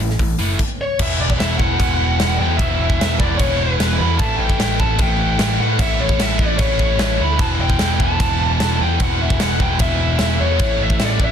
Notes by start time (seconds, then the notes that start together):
0.00 A1 A2 E3, open hi-hat
0.10 snare
0.19 A1 A2 E3, kick, open hi-hat
0.39 F#1 A2 E3 A3, open hi-hat
0.59 kick, crash
0.81 C#5
0.99 E1 E2 B2 E3 E5, kick, crash
1.19 E1 D5
1.30 kick
1.39 E1 E2 B2 E3 E5, snare, crash
1.57 E1 E2 B2 E3 F#5, kick
1.79 E1 E2 B2 E3, kick, crash
2.20 E1 E2 B2 E3, snare, crash
2.38 E2 B2 E3 G5
2.57 E1 E2 E5, kick, crash
2.61 B2 E3
2.79 E1
2.90 kick
2.99 E1 E2 B2 E3, snare, crash
3.19 E1 E2 B2 E3 D5, kick
3.38 E1 E2 B2 E3 C#5, kick, crash
3.57 C5
3.74 B4
3.79 E1 E2 B2 E3, snare, crash
3.99 E2 B2 E3 B5
4.19 A1 A2 E3 A3 A5, kick, crash
4.37 A1 G5
4.50 kick
4.59 A1 A2 E3 A3, snare, crash
4.79 A1 A2 E3 A3 A5, kick
4.98 A1 A2 E3 A3 G5, kick, crash
5.39 A1 A2 E3 A3, snare, crash
5.59 A2 E3 A3 F#5
5.79 A1 A2 E3 A3 E5, kick, crash
6.00 A1 C#5
6.09 kick
6.19 A1 A2 E3 A3 E5, snare, crash
6.39 A1 A2 E3 A3 D5, kick
6.58 A1 A2 E3 A3 C#5, kick, crash
6.79 kick
6.99 A1 A2 E3 A3 C#5, snare, crash
7.18 D2 A2 E3 A3 B5
7.38 E1 E2 B2 E3 A5, kick, crash
7.59 E1 G5
7.70 kick
7.79 E1 E2 B2 E3, snare, crash
8.00 E1 E2 B2 E3 A5, kick
8.20 E1 E2 B2 E3, kick, crash
8.60 E1 E2 B2 E3, snare, crash
8.80 E2 B2 E3 G5
9.00 E1 E2 B2 E3 F#5, kick, crash
9.21 E1 E5
9.30 kick
9.40 E1 E2 B2 E3 F#5, snare, crash
9.59 E1 E2 B2 E3 G5, kick
9.79 E1 E2 B2 E3 E5, kick, crash
10.19 E1 E2 B2 E3, snare, crash
10.40 E2 B2 E3 C#5
10.59 A1 A2 E3 A3, kick, crash
10.81 A1 E5
10.90 kick
11.00 A1 A2 E3 A3, snare, crash
11.05 D5
11.19 A1 A2 E3 A3, kick
11.24 E5